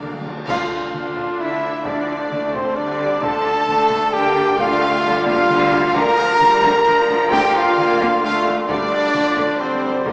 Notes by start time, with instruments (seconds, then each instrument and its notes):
Already playing: violin section D5 F5
0.02 double bass section D2, cello section D3, timpani D3, viola section D4 A#4, taiko mid
0.13 timpani D3
0.21 timpani D3
0.25 double bass section D2, cello section D3, timpani D3, viola section D4 F4, taiko mid
0.36 timpani D3
0.48 double bass section D2, cello section D3, trombone section D3 D4, french horn section F4, trumpet F4, flute section F5, violin section F5, concert bass drum, taiko, crash
0.93 double bass section D2, cello section D3, viola section D4, taiko mid
1.17 taiko
1.39 double bass section D2, cello section D3, trumpet E4, french horn section E4, flute section E5, violin section E5
1.84 double bass section D2, cello section D3, viola section F3, trumpet D4, french horn section D4, flute section D5, violin section D5, taiko
2.30 double bass section D2, cello section D3, viola section A3, taiko mid
2.53 french horn section C4, trumpet C4, flute section C5, violin section C5, taiko
2.76 double bass section D2, cello section D3, viola section G3, french horn section D4, trumpet D4, flute section D5, violin section D5
3.21 double bass section D2, cello section D3, viola section F3, french horn section A4, trumpet A4, flute section A5, violin section A5, taiko
3.67 double bass section D2, cello section D3, viola section A3, taiko mid
3.91 taiko
4.13 double bass section D2, cello section D3, viola section A#3, trumpet G4, french horn section G4, flute section G5, violin section G5
4.58 double bass section D2, cello section D3, viola section A3, trumpet F4, french horn section F4, flute section F5, violin section F5, taiko
4.81 taiko rim
5.04 double bass section D2, cello section D3, viola section G3, taiko mid
5.26 french horn section F4, trumpet F4, flute section F5, violin section F5, taiko high
5.49 double bass section D2, cello section D3, taiko mid
5.72 taiko low
5.95 double bass section D2, cello section D3, timpani D3, trombone section D3 D4, viola section F3, french horn section A#4, trumpet A#4, violin section A#5, flute section A#5, taiko
6.19 taiko rim
6.40 double bass section D2, cello section D3, viola section G3, taiko mid
6.63 double bass section D2, cello section D3, taiko
6.86 double bass section D2, cello section D3, viola section F3
7.08 double bass section D2, cello section D3
7.31 double bass section D2, cello section D3, trumpet G4, french horn section G4, flute section G5, violin section G5, taiko
7.54 trumpet F4, french horn section F4, flute section F5, violin section F5
7.77 double bass section D2, cello section D3, viola section A#3, taiko mid
7.99 double bass section D2, cello section D3, taiko
8.22 double bass section D2, cello section D3, viola section A3, french horn section F4, trumpet F4, flute section F5, violin section F5
8.46 double bass section D2, cello section D3
8.67 double bass section D2, cello section D3, viola section G3, trumpet D4, french horn section D4, flute section D5, violin section D5, taiko
8.77 timpani D3
8.83 timpani D3
8.91 timpani D3, taiko rim
8.99 timpani D3
9.06 timpani D3
9.13 double bass section D2, timpani D3, cello section D3, viola section F3, taiko mid
9.21 timpani D3
9.29 timpani D3
9.36 double bass section D2, timpani D3, cello section D3, taiko
9.45 timpani D3
9.52 timpani D3
9.59 double bass section D2, timpani D3, cello section D3, viola section G3, trumpet C4, french horn section C4, flute section C5, violin section C5
9.67 timpani D3
9.74 timpani D3
9.82 double bass section D2, timpani D3, cello section D3
9.89 timpani D3
9.96 timpani D3
10.04 double bass section D2, timpani D3, cello section D3, viola section F3, trumpet A#3, french horn section A#3, violin section A#4, flute section A#4, taiko